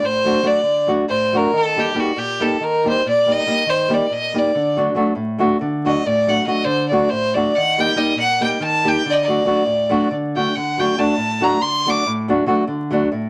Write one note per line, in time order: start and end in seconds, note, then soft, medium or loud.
0.01 0.34 A2 medium
0.01 0.49 C5 medium
0.24 0.40 F#3 medium
0.24 0.41 A3 medium
0.24 0.41 D4 medium
0.24 0.41 F#4 medium
0.43 0.59 F#3 medium
0.43 0.59 A3 medium
0.43 0.60 D4 medium
0.43 0.60 F#4 medium
0.47 0.90 D5 medium
0.63 0.98 D3 medium
0.87 1.04 F#3 medium
0.87 1.04 A3 medium
0.87 1.04 D4 medium
0.87 1.04 F#4 medium
1.09 1.44 A2 medium
1.09 1.38 C5 medium
1.32 1.49 F#3 medium
1.32 1.49 A3 soft
1.32 1.50 D4 soft
1.32 1.50 F#4 medium
1.36 1.59 A#4 medium
1.53 1.85 D#3 medium
1.57 1.81 A4 medium
1.76 1.91 G3 medium
1.76 1.91 A#3 medium
1.76 1.92 D#4 medium
1.76 1.92 G4 medium
1.76 2.01 G4 medium
1.94 2.10 G3 medium
1.94 2.10 A#3 medium
1.94 2.10 D#4 medium
1.94 2.11 G4 medium
1.99 2.19 F#4 medium
2.16 2.50 A#2 medium
2.16 2.44 G4 medium
2.40 2.55 G3 medium
2.40 2.55 A#3 medium
2.40 2.56 D#4 medium
2.40 2.56 G4 medium
2.40 2.65 A4 medium
2.60 2.94 D#3 medium
2.60 2.86 A#4 medium
2.84 3.00 G3 medium
2.84 3.00 A#3 soft
2.84 3.00 D#4 medium
2.84 3.01 G4 medium
2.88 3.05 C5 medium
3.05 3.37 A#2 medium
3.05 3.33 D5 loud
3.26 3.41 G3 medium
3.26 3.42 A#3 medium
3.26 3.42 D#4 soft
3.26 3.42 G4 medium
3.32 3.71 D#5 loud
3.46 3.61 G3 medium
3.46 3.62 A#3 medium
3.46 3.62 D#4 medium
3.46 3.62 G4 medium
3.66 4.00 D#3 medium
3.66 3.95 C5 loud
3.88 4.05 G3 medium
3.88 4.05 A#3 medium
3.88 4.06 D#4 medium
3.88 4.06 G4 medium
3.94 4.14 D5 medium
4.10 4.44 A#2 medium
4.10 4.40 D#5 medium
4.33 4.50 G3 soft
4.33 4.50 A#3 medium
4.33 4.50 D#4 soft
4.33 4.51 G4 medium
4.38 4.79 D5 medium
4.55 4.87 D3 medium
4.77 4.92 F#3 medium
4.77 4.92 A3 soft
4.77 4.92 D4 medium
4.77 4.93 F#4 medium
4.95 5.11 F#3 medium
4.95 5.11 A3 medium
4.95 5.12 D4 medium
4.95 5.12 F#4 medium
5.15 5.50 A2 medium
5.38 5.55 F#3 medium
5.38 5.55 A3 medium
5.38 5.56 D4 medium
5.38 5.56 F#4 medium
5.61 5.95 D3 medium
5.85 6.01 F#3 medium
5.85 6.01 A3 medium
5.85 6.01 D4 soft
5.85 6.01 F#4 medium
5.85 6.08 D#5 medium
6.06 6.37 A2 medium
6.06 6.30 D5 medium
6.27 6.43 F#3 medium
6.27 6.43 A3 medium
6.27 6.43 D4 soft
6.27 6.44 F#4 medium
6.27 6.46 F#5 medium
6.46 6.62 F#3 medium
6.46 6.62 A3 medium
6.46 6.62 D4 soft
6.46 6.63 F#4 medium
6.46 6.66 D#5 medium
6.65 7.00 D3 medium
6.65 6.88 C5 medium
6.88 7.07 F#3 medium
6.88 7.07 A3 medium
6.88 7.07 D4 medium
6.88 7.11 D5 medium
6.93 7.08 F#4 medium
7.09 7.45 A2 medium
7.09 7.36 C5 medium
7.34 7.51 F#3 medium
7.34 7.51 A3 medium
7.34 7.52 D4 medium
7.34 7.52 F#4 medium
7.34 7.57 D5 medium
7.55 7.88 D#3 medium
7.55 7.81 F#5 loud
7.78 7.93 G3 medium
7.78 7.93 A#3 medium
7.78 7.94 D#4 medium
7.78 7.94 G4 medium
7.78 7.99 G5 loud
7.96 8.12 G3 medium
7.96 8.12 A#3 medium
7.96 8.12 D#4 medium
7.96 8.13 G4 medium
7.96 8.17 D#5 medium
8.15 8.50 A#2 medium
8.19 8.41 F#5 loud
8.41 8.57 G3 medium
8.41 8.57 A#3 medium
8.41 8.57 D#4 medium
8.41 8.58 G4 medium
8.41 8.61 G5 medium
8.60 8.95 D#3 medium
8.60 8.89 A5 medium
8.84 9.01 G3 medium
8.84 9.01 A#3 medium
8.84 9.01 D#4 medium
8.84 9.01 G4 medium
8.88 9.11 G5 medium
9.05 9.38 D3 medium
9.09 9.13 D5 medium
9.09 9.24 D#5 medium
9.23 10.13 D5 medium
9.27 9.43 F#3 medium
9.27 9.43 A3 medium
9.27 9.44 D4 medium
9.27 9.44 F#4 medium
9.45 9.62 F#3 medium
9.45 9.62 A3 medium
9.45 9.62 D4 medium
9.45 9.62 F#4 medium
9.65 10.01 A2 medium
9.89 10.06 F#3 medium
9.89 10.07 A3 medium
9.89 10.07 D4 medium
9.89 10.07 F#4 loud
10.11 10.46 D3 medium
10.35 10.52 F#3 soft
10.35 10.52 A3 medium
10.35 10.52 D4 soft
10.35 10.52 F#4 medium
10.35 10.57 G5 medium
10.55 10.88 D3 medium
10.55 10.81 F#5 medium
10.78 10.93 F#3 medium
10.78 10.94 A3 medium
10.78 10.94 D4 medium
10.78 10.94 F#4 medium
10.78 11.00 G5 medium
10.97 11.13 F#3 medium
10.97 11.13 A3 medium
10.97 11.14 D4 medium
10.97 11.14 F#4 medium
10.97 11.45 A5 medium
11.17 11.51 A2 medium
11.41 11.57 F#3 medium
11.41 11.57 A3 medium
11.41 11.57 D4 medium
11.41 11.58 F#4 medium
11.41 11.63 A#5 medium
11.61 11.96 D3 medium
11.61 11.91 C6 medium
11.86 12.02 F#3 medium
11.86 12.02 A3 soft
11.86 12.02 D4 soft
11.86 12.03 F#4 medium
11.86 12.08 D6 medium
12.06 12.38 A2 medium
12.28 12.44 F#3 medium
12.28 12.44 A3 medium
12.28 12.44 D4 medium
12.28 12.45 F#4 medium
12.46 12.62 F#3 medium
12.46 12.63 A3 medium
12.46 12.63 D4 medium
12.46 12.63 F#4 medium
12.67 13.02 D3 medium
12.90 13.07 F#3 medium
12.90 13.07 A3 medium
12.90 13.08 D4 medium
12.90 13.08 F#4 medium
13.12 13.29 A2 medium